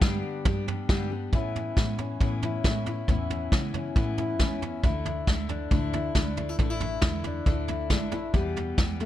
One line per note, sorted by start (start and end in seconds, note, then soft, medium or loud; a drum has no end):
0.01 0.45 G2 medium
0.01 0.21 G2 medium
0.01 0.46 D3 medium
0.01 0.44 G3 medium
0.01 0.45 B3 medium
0.01 0.46 D4 medium
0.01 0.46 G4 medium
0.01 kick loud
0.01 snare loud
0.45 0.84 G2 medium
0.45 0.67 G3 medium
0.45 0.67 B3 medium
0.45 0.66 D4 medium
0.45 0.66 G4 medium
0.45 kick loud
0.45 floor tom loud
0.67 0.89 G3 soft
0.67 0.89 B3 medium
0.67 0.89 D4 medium
0.67 0.89 G4 medium
0.67 floor tom medium
0.89 1.11 G2 medium
0.89 1.28 G2 loud
0.89 1.11 D3 medium
0.89 1.11 G3 medium
0.89 1.10 B3 medium
0.89 1.10 D4 medium
0.89 1.10 G4 medium
0.89 kick loud
0.89 snare loud
1.11 1.33 G3 soft
1.11 1.33 B3 soft
1.11 1.33 D4 medium
1.11 1.33 G4 medium
1.33 1.72 A2 medium
1.33 1.77 A2 medium
1.33 1.76 E3 medium
1.33 1.76 B3 medium
1.33 1.77 C#4 medium
1.33 1.78 E4 medium
1.33 kick medium
1.33 floor tom medium
1.56 floor tom medium
1.77 2.16 A2 medium
1.77 2.21 E3 medium
1.77 2.20 B3 medium
1.77 2.21 C#4 medium
1.77 2.21 E4 medium
1.77 kick loud
1.77 snare medium
1.77 floor tom medium
1.98 2.64 C#4 medium
1.98 floor tom medium
2.21 2.60 E2 medium
2.21 2.60 A2 medium
2.21 2.65 A2 medium
2.21 2.63 E3 medium
2.21 2.63 B3 medium
2.21 2.64 C#4 medium
2.21 2.65 E4 medium
2.21 kick medium
2.21 floor tom medium
2.42 2.88 E4 medium
2.42 floor tom medium
2.63 3.04 A2 medium
2.63 2.86 E3 medium
2.63 2.86 B3 medium
2.63 2.85 C#4 medium
2.63 2.85 E4 medium
2.63 kick medium
2.63 snare medium
2.63 floor tom medium
2.86 3.08 B3 soft
2.86 3.08 C#4 soft
2.86 3.08 E4 soft
2.86 floor tom medium
3.08 3.47 E2 medium
3.08 3.52 A2 medium
3.08 3.51 E3 medium
3.08 3.51 B3 medium
3.08 3.52 C#4 medium
3.08 3.53 E4 medium
3.08 kick medium
3.08 floor tom medium
3.30 floor tom medium
3.52 3.91 C#3 medium
3.52 3.95 E3 medium
3.52 3.95 B3 medium
3.52 3.95 C#4 medium
3.52 3.96 E4 medium
3.52 kick loud
3.52 snare medium
3.52 floor tom medium
3.74 4.40 C#4 medium
3.74 floor tom medium
3.95 4.35 E2 medium
3.95 4.40 A2 medium
3.95 4.39 E3 medium
3.95 4.40 B3 medium
3.95 4.40 C#4 medium
3.95 4.42 E4 medium
3.95 kick loud
3.95 floor tom medium
4.18 4.62 E4 medium
4.18 floor tom medium
4.39 4.79 E2 medium
4.39 4.62 E3 medium
4.39 4.62 B3 medium
4.39 4.62 C#4 medium
4.39 4.61 E4 medium
4.39 kick medium
4.39 snare medium
4.39 floor tom medium
4.62 4.84 B3 soft
4.62 4.84 C#4 soft
4.62 4.84 E4 soft
4.62 floor tom medium
4.83 5.23 D2 medium
4.83 5.06 D3 medium
4.83 5.06 A3 medium
4.83 5.06 D4 medium
4.83 5.05 E4 medium
4.83 kick medium
4.83 floor tom medium
5.05 5.27 A3 soft
5.05 5.28 D4 soft
5.05 5.28 E4 soft
5.05 floor tom medium
5.27 5.66 D2 medium
5.27 5.71 D3 medium
5.27 5.71 A3 medium
5.27 5.72 D4 medium
5.27 5.73 E4 medium
5.27 kick medium
5.27 snare medium
5.27 floor tom medium
5.49 6.15 D4 medium
5.49 floor tom medium
5.71 6.10 D2 medium
5.71 6.10 A2 medium
5.71 6.14 D3 medium
5.71 6.15 A3 medium
5.71 6.16 D4 medium
5.71 6.17 E4 medium
5.71 kick loud
5.71 floor tom medium
5.93 6.37 E4 medium
5.93 floor tom medium
6.15 6.54 D2 medium
6.15 6.37 D3 medium
6.15 6.38 A3 medium
6.15 6.37 D4 medium
6.15 6.36 E4 medium
6.15 kick medium
6.15 snare medium
6.15 floor tom medium
6.37 6.59 A3 soft
6.37 6.59 D4 soft
6.37 6.59 E4 medium
6.37 floor tom medium
6.49 6.59 E4 soft
6.59 6.98 A1 medium
6.59 6.99 D2 medium
6.59 6.81 D3 medium
6.59 6.81 A3 medium
6.59 6.81 D4 medium
6.59 6.80 E4 medium
6.59 kick medium
6.59 floor tom medium
6.70 7.68 E4 medium
6.80 7.02 A3 soft
6.80 7.03 D4 soft
6.80 7.03 E4 soft
6.80 floor tom medium
7.02 7.41 E2 medium
7.02 7.45 D3 medium
7.02 7.46 A3 soft
7.02 7.46 D4 medium
7.02 7.47 E4 medium
7.02 kick medium
7.02 snare loud
7.02 floor tom medium
7.24 7.90 D4 medium
7.24 floor tom medium
7.46 7.90 D2 medium
7.46 7.86 A2 medium
7.46 7.89 D3 medium
7.46 7.90 A3 medium
7.46 7.91 D4 medium
7.46 7.91 E4 medium
7.46 kick medium
7.46 floor tom medium
7.68 8.13 E4 soft
7.68 floor tom medium
7.90 8.29 A1 medium
7.90 8.12 D3 medium
7.90 8.13 A3 medium
7.90 8.12 D4 medium
7.90 8.11 E4 medium
7.90 kick medium
7.90 snare medium
7.90 floor tom medium
8.11 8.35 A3 soft
8.11 8.35 D4 soft
8.11 8.34 E4 soft
8.11 floor tom medium
8.33 8.78 E2 medium
8.33 8.73 E2 medium
8.33 8.78 B2 medium
8.33 8.76 E3 medium
8.33 8.77 G3 medium
8.33 8.78 B3 medium
8.33 8.79 G4 medium
8.33 kick medium
8.33 floor tom medium
8.56 floor tom medium
8.77 9.06 E2 medium
8.77 9.06 E3 medium
8.77 9.06 G3 medium
8.77 9.06 B3 medium
8.77 9.06 G4 medium
8.77 kick loud
8.77 snare loud
8.77 floor tom medium
9.00 9.06 A3 medium
9.00 floor tom medium